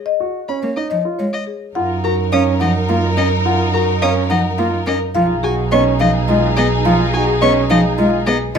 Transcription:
0.06 0.24 D#5 medium
0.20 0.39 F#4 soft
0.48 0.67 C#4 medium
0.48 0.59 B5 soft
0.62 0.73 A#3 soft
0.62 0.81 C#5 soft
0.76 0.95 D#4 soft
0.76 0.87 D#5 soft
0.90 1.02 F3 soft
0.90 1.09 D#5 medium
1.05 1.23 F4 soft
1.19 1.30 G#3 soft
1.19 1.37 C#5 soft
1.33 1.44 D#5 medium
1.47 1.66 G#4 soft
1.75 5.00 F#2 medium
1.75 4.97 D#4 medium
1.75 1.94 F4 medium
1.75 4.97 A#4 medium
1.75 1.94 F#5 medium
2.04 2.22 F#4 soft
2.04 2.22 A#4 medium
2.04 2.15 A#5 medium
2.32 2.51 C#4 medium
2.32 2.43 C#4 medium
2.32 2.51 F5 medium
2.32 2.43 D#6 medium
2.60 2.71 F3 medium
2.60 2.79 D#4 medium
2.60 2.72 D#5 medium
2.60 2.79 F#5 medium
2.89 3.00 A#3 medium
2.89 3.07 F4 medium
2.89 3.07 F5 medium
3.17 3.28 C#4 medium
3.17 3.36 A#4 medium
3.17 3.28 D#5 medium
3.46 3.64 F4 medium
3.46 3.64 F#5 medium
3.74 3.92 F#4 medium
3.74 3.92 A#4 medium
3.74 3.84 A#5 medium
4.02 4.13 C#4 medium
4.02 4.21 C#4 medium
4.02 4.20 F5 medium
4.02 4.13 D#6 medium
4.30 4.41 F3 medium
4.30 4.49 D#4 soft
4.30 4.41 D#5 medium
4.30 4.49 F#5 medium
4.58 4.69 A#3 medium
4.58 4.77 F4 medium
4.58 4.77 F5 medium
4.86 4.97 C#4 medium
4.86 5.05 A#4 medium
4.86 4.98 D#5 medium
5.15 8.40 B1 medium
5.15 5.26 F3 medium
5.15 8.37 D#4 medium
5.15 5.34 F4 medium
5.15 8.37 G#4 medium
5.15 5.33 F5 medium
5.43 5.62 F#4 medium
5.43 5.62 G#4 medium
5.43 5.54 G#5 medium
5.71 5.82 B3 medium
5.71 5.90 C#4 medium
5.71 5.90 D#5 medium
5.71 5.82 C#6 medium
6.00 6.11 F3 medium
6.00 6.19 D#4 medium
6.00 6.11 D#5 medium
6.00 6.19 F5 medium
6.28 6.39 G#3 medium
6.28 6.47 F4 medium
6.28 6.47 D#5 medium
6.57 6.67 B3 medium
6.57 6.75 G#4 medium
6.57 6.67 D#5 medium
6.85 6.96 F3 medium
6.85 7.04 F4 medium
6.85 7.04 F5 medium
7.13 7.32 F#4 medium
7.13 7.32 G#4 medium
7.13 7.24 G#5 medium
7.41 7.52 B3 medium
7.41 7.60 C#4 medium
7.41 7.60 D#5 medium
7.41 7.52 C#6 medium
7.70 7.81 F3 medium
7.70 7.89 D#4 medium
7.70 7.81 D#5 medium
7.70 7.88 F5 medium
7.98 8.09 G#3 medium
7.98 8.17 F4 medium
7.98 8.17 D#5 medium
8.27 8.37 B3 medium
8.27 8.45 G#4 medium
8.27 8.37 D#5 medium
8.55 8.58 F3 loud
8.55 8.58 F4 medium
8.55 8.58 B4 medium
8.55 8.58 D#5 medium

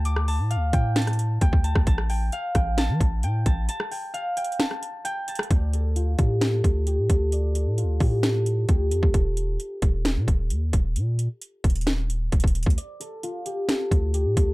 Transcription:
0.00 0.41 D2 loud
0.00 0.35 F5 medium
0.00 0.73 G5 medium
0.00 0.27 A5 medium
0.05 1.27 D6 medium
0.05 closed hi-hat medium
0.16 cross-stick medium
0.28 0.96 A5 medium
0.28 open hi-hat medium
0.39 0.58 A2 loud
0.50 2.17 F5 medium
0.50 closed hi-hat medium
0.56 0.72 D2 loud
0.73 1.39 A2 loud
0.73 1.41 G5 medium
0.73 kick loud
0.73 closed hi-hat medium
0.96 1.64 A5 medium
0.96 snare loud
0.96 closed hi-hat medium
1.02 closed hi-hat medium
1.07 cross-stick medium
1.07 closed hi-hat medium
1.13 closed hi-hat soft
1.19 closed hi-hat medium
1.41 1.52 D2 loud
1.41 2.09 G5 medium
1.41 kick loud
1.41 closed hi-hat medium
1.53 1.75 D2 loud
1.53 kick loud
1.64 1.86 A5 medium
1.64 closed hi-hat medium
1.75 1.86 D2 loud
1.75 kick medium
1.75 cross-stick loud
1.87 2.31 A1 loud
1.87 2.78 A5 medium
1.87 kick loud
1.87 closed hi-hat medium
1.98 cross-stick medium
2.10 2.55 G5 medium
2.10 open hi-hat medium
2.32 3.99 F5 medium
2.32 closed hi-hat medium
2.55 2.91 A1 loud
2.55 3.23 G5 medium
2.55 kick loud
2.55 cross-stick medium
2.55 closed hi-hat medium
2.78 3.46 A5 medium
2.78 snare loud
2.78 closed hi-hat medium
2.89 3.00 E3 loud
3.00 3.25 A1 loud
3.00 kick medium
3.00 closed hi-hat medium
3.23 3.45 A2 loud
3.23 3.91 G5 medium
3.23 closed hi-hat medium
3.46 3.69 A1 loud
3.46 3.68 A5 medium
3.46 kick medium
3.46 closed hi-hat loud
3.69 4.59 A5 medium
3.69 closed hi-hat medium
3.80 cross-stick medium
3.91 4.36 G5 medium
3.91 open hi-hat medium
4.14 5.80 F5 medium
4.14 closed hi-hat medium
4.37 5.04 G5 medium
4.37 closed hi-hat medium
4.44 closed hi-hat medium
4.52 closed hi-hat soft
4.60 5.28 A5 medium
4.60 snare loud
4.60 closed hi-hat medium
4.71 cross-stick medium
4.83 closed hi-hat medium
5.05 6.60 G5 medium
5.05 closed hi-hat medium
5.28 6.73 A5 medium
5.28 closed hi-hat medium
5.35 cross-stick loud
5.35 closed hi-hat medium
5.43 closed hi-hat medium
5.51 6.16 D2 loud
5.51 7.32 D5 medium
5.51 kick loud
5.51 closed hi-hat medium
5.73 6.41 A4 medium
5.73 closed hi-hat medium
5.96 7.77 F4 medium
5.96 closed hi-hat medium
6.19 6.62 A2 loud
6.19 6.86 G4 medium
6.19 kick loud
6.19 closed hi-hat medium
6.41 7.09 A4 medium
6.41 snare loud
6.41 closed hi-hat medium
6.64 7.00 D2 loud
6.64 kick medium
6.64 closed hi-hat medium
6.87 8.00 G4 medium
6.87 closed hi-hat medium
6.98 7.09 A2 loud
7.10 7.68 D2 loud
7.10 7.55 A4 medium
7.10 kick medium
7.10 closed hi-hat medium
7.32 9.17 D5 medium
7.32 closed hi-hat medium
7.55 8.23 A4 medium
7.55 closed hi-hat medium
7.66 7.85 A2 loud
7.78 10.30 F4 medium
7.78 closed hi-hat medium
7.83 8.00 D2 loud
8.00 8.66 A2 loud
8.00 8.68 G4 medium
8.00 kick loud
8.00 open hi-hat medium
8.23 8.91 A4 medium
8.23 snare loud
8.23 closed hi-hat medium
8.46 closed hi-hat medium
8.68 8.93 D2 loud
8.68 11.04 G4 medium
8.68 kick loud
8.68 closed hi-hat medium
8.91 9.02 F2 loud
8.91 11.11 A4 medium
8.91 closed hi-hat medium
9.03 9.14 D2 loud
9.03 kick loud
9.14 9.58 D#1 loud
9.14 kick loud
9.14 closed hi-hat medium
9.37 closed hi-hat medium
9.60 closed hi-hat medium
9.82 10.18 D#1 loud
9.82 kick loud
9.82 closed hi-hat medium
10.05 snare loud
10.05 closed hi-hat medium
10.16 10.27 A#2 loud
10.28 10.52 D#1 loud
10.28 kick medium
10.28 closed hi-hat medium
10.50 10.72 D#2 loud
10.50 closed hi-hat medium
10.73 10.98 D#1 loud
10.73 kick medium
10.73 closed hi-hat medium
10.96 11.28 A#2 medium
10.96 closed hi-hat medium
11.19 closed hi-hat medium
11.42 closed hi-hat medium
11.64 12.30 D#1 loud
11.64 kick loud
11.64 closed hi-hat medium
11.70 closed hi-hat medium
11.76 closed hi-hat medium
11.81 closed hi-hat medium
11.87 snare loud
11.87 closed hi-hat medium
12.10 closed hi-hat medium
12.32 12.43 D#1 loud
12.32 kick medium
12.32 closed hi-hat medium
12.40 12.66 D#1 loud
12.40 kick loud
12.40 closed hi-hat medium
12.48 closed hi-hat medium
12.55 closed hi-hat medium
12.63 12.77 D2 loud
12.63 kick loud
12.63 closed hi-hat medium
12.70 closed hi-hat medium
12.78 14.54 D5 medium
12.78 closed hi-hat medium
13.00 13.68 A4 medium
13.00 closed hi-hat medium
13.23 14.54 F4 medium
13.23 closed hi-hat medium
13.46 14.14 G4 medium
13.46 closed hi-hat medium
13.69 14.37 A4 medium
13.69 snare loud
13.69 closed hi-hat medium
13.91 14.27 D2 loud
13.91 kick medium
13.91 closed hi-hat medium
14.14 14.54 G4 medium
14.14 closed hi-hat medium
14.26 14.36 A2 loud
14.37 14.54 D2 loud
14.37 14.54 A4 medium
14.37 kick medium
14.37 closed hi-hat medium

